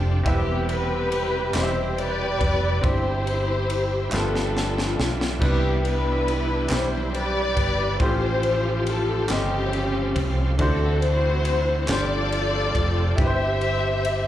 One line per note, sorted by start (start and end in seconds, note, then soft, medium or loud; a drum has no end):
0.00 0.22 F1 loud
0.00 0.22 F3 medium
0.00 0.22 A3 medium
0.00 0.22 C4 medium
0.00 0.23 C4 medium
0.00 0.28 C4 medium
0.00 0.22 D4 medium
0.00 0.23 D4 medium
0.00 0.27 F4 medium
0.00 0.22 G4 medium
0.00 0.25 G4 medium
0.00 0.27 A4 medium
0.00 0.28 F5 medium
0.23 1.51 E1 loud
0.23 1.10 C3 medium
0.23 2.80 C3 medium
0.23 1.51 E3 medium
0.23 2.80 E3 medium
0.23 2.80 G3 medium
0.23 1.10 E4 medium
0.23 1.11 G4 medium
0.23 2.80 G4 medium
0.23 1.11 B4 medium
0.23 1.12 E5 loud
0.23 kick loud
0.23 ride medium
0.28 1.52 B3 medium
0.28 1.52 C4 medium
0.28 0.67 G4 medium
0.69 1.95 G4 medium
0.69 1.55 B4 loud
0.69 ride medium
1.12 ride medium
1.53 2.37 E1 medium
1.53 2.39 C4 medium
1.53 2.40 E4 medium
1.53 2.40 G4 medium
1.53 1.98 C5 medium
1.53 1.62 D#5 medium
1.53 2.41 B5 medium
1.53 snare loud
1.53 clap loud
1.53 ride medium
1.63 2.44 E5 medium
1.98 2.81 G4 medium
1.98 2.81 B4 medium
1.98 2.85 D5 loud
1.98 ride soft
2.41 2.80 F1 medium
2.41 kick medium
2.41 ride medium
2.81 4.09 G1 loud
2.81 4.09 G2 medium
2.81 3.68 C4 medium
2.81 4.13 C4 medium
2.81 3.69 E4 medium
2.81 4.13 E4 medium
2.81 4.12 G4 medium
2.81 3.70 G4 medium
2.81 kick loud
2.81 ride medium
2.86 4.10 E4 medium
2.86 4.10 G4 medium
2.86 4.14 C5 loud
3.27 ride medium
3.70 ride medium
4.09 4.95 G1 loud
4.09 5.37 G2 medium
4.09 4.97 G3 medium
4.09 4.97 B3 medium
4.09 4.98 F4 medium
4.09 4.99 A4 medium
4.09 4.98 E5 medium
4.09 5.42 E5 medium
4.09 clap loud
4.13 5.43 F3 medium
4.13 5.42 A3 medium
4.13 4.20 A#3 soft
4.13 5.39 D4 medium
4.13 5.39 F4 medium
4.13 5.42 G4 medium
4.13 5.11 A4 medium
4.13 snare medium
4.20 5.46 B3 medium
4.36 snare medium
4.57 snare medium
4.78 snare medium
4.99 5.39 B1 medium
4.99 snare loud
5.21 snare loud
5.39 6.67 C2 loud
5.39 6.67 C3 medium
5.39 5.49 D#3 soft
5.39 6.26 G3 medium
5.39 7.97 G3 medium
5.39 6.27 B3 medium
5.39 6.27 D4 medium
5.39 7.97 D4 medium
5.39 6.28 E4 medium
5.39 7.97 E4 medium
5.39 7.97 G4 medium
5.39 6.28 B4 medium
5.39 kick loud
5.39 crash medium
5.44 6.68 B3 medium
5.44 5.86 E4 medium
5.44 5.83 G4 medium
5.49 8.00 E3 medium
5.85 7.11 D4 medium
5.85 7.11 E4 medium
5.85 6.72 B4 loud
5.85 ride medium
6.28 ride medium
6.69 7.53 B1 loud
6.69 7.56 G3 medium
6.69 7.56 C4 medium
6.69 7.56 D4 medium
6.69 7.57 E4 medium
6.69 7.57 B5 medium
6.69 snare loud
6.69 clap loud
6.69 ride medium
6.73 7.15 C5 medium
7.14 7.97 G4 medium
7.14 7.97 B4 medium
7.14 8.01 D5 loud
7.14 ride medium
7.57 7.97 G1 medium
7.57 kick medium
7.57 ride medium
7.99 9.26 A1 loud
7.99 9.26 A2 medium
7.99 10.55 F3 medium
7.99 8.85 A3 medium
7.99 10.55 A3 medium
7.99 8.06 C4 medium
7.99 8.86 F4 medium
7.99 10.56 F4 medium
7.99 9.26 F4 medium
7.99 10.55 G4 medium
7.99 8.86 G4 medium
7.99 9.26 G4 medium
7.99 10.55 C5 medium
7.99 8.83 C5 loud
7.99 8.87 C5 medium
7.99 kick loud
7.99 ride medium
8.06 8.89 C#4 medium
8.43 ride soft
8.87 9.30 A4 loud
8.87 ride medium
9.28 10.12 G1 medium
9.28 10.15 C#3 medium
9.28 10.14 A3 medium
9.28 10.56 C4 medium
9.28 10.56 C#4 medium
9.28 10.15 F4 medium
9.28 10.16 G4 medium
9.28 10.28 G4 loud
9.28 10.16 D#5 medium
9.28 snare loud
9.28 clap loud
9.28 ride medium
9.73 ride medium
10.16 10.55 C2 loud
10.16 kick medium
10.16 ride medium
10.57 11.85 D2 loud
10.57 11.85 D3 medium
10.57 11.89 E3 medium
10.57 11.44 A3 medium
10.57 11.88 A3 medium
10.57 11.88 C4 medium
10.57 11.86 C4 medium
10.57 11.44 D4 medium
10.57 11.88 D4 medium
10.57 11.45 E4 medium
10.57 10.66 F4 medium
10.57 11.45 F#4 medium
10.57 11.03 F#4 medium
10.57 11.00 A4 loud
10.57 11.46 C5 medium
10.57 kick loud
10.57 ride medium
10.66 11.92 F#4 medium
11.02 11.86 E4 medium
11.02 11.86 F#4 medium
11.02 11.90 C5 loud
11.02 ride medium
11.45 ride medium
11.87 12.71 G1 loud
11.87 13.15 G2 medium
11.87 13.19 F3 medium
11.87 12.74 A3 medium
11.87 13.19 A3 medium
11.87 13.17 C4 medium
11.87 12.74 D4 medium
11.87 13.18 D4 medium
11.87 12.75 F4 medium
11.87 13.15 F4 medium
11.87 13.17 G4 medium
11.87 12.75 G4 medium
11.87 13.15 A4 medium
11.87 12.76 C5 medium
11.87 13.19 D5 loud
11.87 snare loud
11.87 clap loud
11.87 ride medium
12.32 ride medium
12.75 13.15 F1 loud
12.75 kick medium
12.75 ride medium
13.16 14.27 G1 loud
13.16 14.27 G2 medium
13.16 14.27 C4 medium
13.16 13.25 D#4 soft
13.16 14.03 E4 medium
13.16 14.04 G4 medium
13.16 14.27 G4 medium
13.16 13.25 B4 medium
13.16 kick loud
13.16 ride medium
13.20 14.27 C5 medium
13.20 14.27 E5 loud
13.25 14.27 E4 medium
13.25 14.08 C5 medium
13.61 ride soft
14.05 ride medium